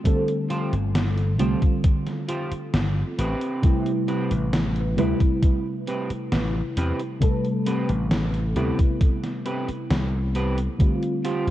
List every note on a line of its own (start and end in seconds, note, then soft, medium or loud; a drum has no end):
0.04 1.34 D3 medium
0.04 1.34 G3 medium
0.04 1.34 A3 medium
0.04 1.35 C4 medium
0.04 1.35 A4 loud
0.04 kick loud
0.04 closed hi-hat medium
0.28 closed hi-hat soft
0.50 0.73 F4 medium
0.50 0.73 G4 medium
0.50 0.73 C5 medium
0.50 closed hi-hat medium
0.73 1.40 G1 medium
0.73 closed hi-hat medium
0.95 snare loud
0.95 closed hi-hat medium
1.18 closed hi-hat soft
1.38 1.54 C2 medium
1.38 1.57 D3 medium
1.38 1.57 G3 medium
1.38 1.57 A3 medium
1.38 1.58 C4 medium
1.38 1.62 F4 medium
1.38 1.58 F4 medium
1.38 1.62 G4 medium
1.38 1.63 C5 medium
1.38 closed hi-hat medium
1.62 kick loud
1.62 closed hi-hat medium
1.84 kick loud
1.84 closed hi-hat medium
2.07 snare soft
2.07 closed hi-hat soft
2.28 2.52 F4 medium
2.28 2.52 G4 medium
2.28 2.52 C5 medium
2.28 closed hi-hat medium
2.52 muted slap bass stroke soft
2.52 closed hi-hat medium
2.74 3.02 G1 medium
2.74 snare loud
2.74 closed hi-hat medium
3.18 3.33 A1 medium
3.18 3.91 C4 medium
3.18 3.91 G4 medium
3.18 3.91 B4 medium
3.18 closed hi-hat medium
3.41 closed hi-hat medium
3.62 4.92 C3 medium
3.62 4.92 G3 medium
3.62 4.93 A3 medium
3.62 4.93 E4 medium
3.62 4.93 B4 medium
3.62 kick loud
3.62 closed hi-hat medium
3.86 closed hi-hat soft
4.08 4.31 C4 medium
4.08 4.31 G4 medium
4.08 4.31 B4 loud
4.08 closed hi-hat medium
4.31 4.98 A1 medium
4.31 closed hi-hat soft
4.53 snare loud
4.53 closed hi-hat medium
4.76 closed hi-hat soft
4.96 5.12 D2 medium
4.96 7.16 C3 medium
4.96 7.16 G3 medium
4.96 7.16 A3 medium
4.96 5.21 C4 medium
4.96 7.17 E4 loud
4.96 5.21 G4 medium
4.96 7.17 B4 medium
4.96 5.21 B4 medium
4.96 closed hi-hat medium
5.20 kick loud
5.20 closed hi-hat medium
5.42 kick loud
5.42 closed hi-hat medium
5.87 6.10 C4 medium
5.87 6.10 G4 medium
5.87 6.11 B4 medium
5.87 closed hi-hat medium
6.10 muted slap bass stroke soft
6.10 closed hi-hat medium
6.32 6.60 A1 medium
6.32 snare loud
6.32 closed hi-hat medium
6.77 6.91 E2 medium
6.77 7.00 C4 medium
6.77 7.00 G4 medium
6.77 7.00 B4 medium
6.77 closed hi-hat medium
6.99 closed hi-hat medium
7.20 8.50 C3 medium
7.20 8.50 G3 medium
7.20 8.51 A3 medium
7.20 8.51 A4 medium
7.20 8.51 B4 medium
7.20 kick loud
7.20 closed hi-hat medium
7.45 closed hi-hat soft
7.66 7.89 C4 medium
7.66 7.89 G4 medium
7.66 7.89 B4 medium
7.66 closed hi-hat medium
7.89 8.56 A1 medium
7.89 closed hi-hat soft
8.11 snare loud
8.11 closed hi-hat medium
8.34 closed hi-hat soft
8.55 8.70 D2 medium
8.55 8.74 C3 medium
8.55 8.74 G3 medium
8.55 8.74 A3 medium
8.55 8.74 B3 medium
8.55 8.79 C4 medium
8.55 8.74 E4 medium
8.55 8.79 G4 medium
8.55 8.79 B4 medium
8.55 closed hi-hat medium
8.79 kick loud
8.79 closed hi-hat soft
9.01 kick loud
9.01 closed hi-hat medium
9.24 snare soft
9.24 closed hi-hat soft
9.45 9.68 C4 medium
9.45 9.69 G4 medium
9.45 9.69 B4 medium
9.45 closed hi-hat medium
9.69 muted slap bass stroke soft
9.69 closed hi-hat medium
9.90 10.67 C2 loud
9.90 snare loud
9.90 closed hi-hat medium
10.35 10.58 C4 medium
10.35 10.58 G4 medium
10.35 10.58 B4 medium
10.35 closed hi-hat medium
10.58 closed hi-hat soft
10.78 11.51 D3 medium
10.78 11.51 G3 medium
10.78 11.51 A3 medium
10.78 11.51 C4 medium
10.78 11.51 F4 medium
10.78 kick loud
10.78 closed hi-hat medium
11.03 closed hi-hat soft
11.25 11.47 F4 medium
11.25 11.48 G4 medium
11.25 11.48 C5 medium
11.25 closed hi-hat medium
11.47 11.51 G1 medium